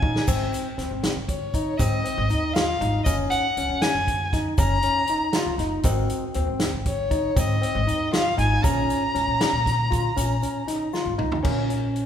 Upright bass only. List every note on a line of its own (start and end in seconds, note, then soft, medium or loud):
0.03 0.13 A#1 medium
0.28 0.48 G#1 medium
0.78 0.88 D#2 medium
0.91 1.12 G#1 medium
1.16 1.67 G#1 medium
1.80 2.00 G#2 loud
2.18 2.28 G#1 loud
2.30 2.71 D#2 medium
2.81 3.01 G#1 loud
3.06 3.27 F#1 medium
3.57 3.67 C#2 medium
3.69 3.80 F#2 medium
3.95 4.46 F#2 medium
4.58 4.79 F#1 loud
5.46 5.57 C#2 medium
5.58 5.79 F#1 medium
5.84 6.05 G#1 medium
6.36 6.46 D#2 medium
6.47 6.68 G#1 medium
6.73 7.25 G#1 medium
7.37 7.58 G#2 loud
7.75 7.85 G#1 loud
7.87 8.29 D#2 medium
8.38 8.59 G#1 loud
8.64 8.85 A#1 medium
9.15 9.25 G#1 medium
9.28 9.38 A#2 medium
9.53 10.05 A#2 medium
10.17 10.38 A#1 loud
11.06 11.16 G#1 medium
11.20 11.40 C#2 medium
11.45 12.06 A#1 medium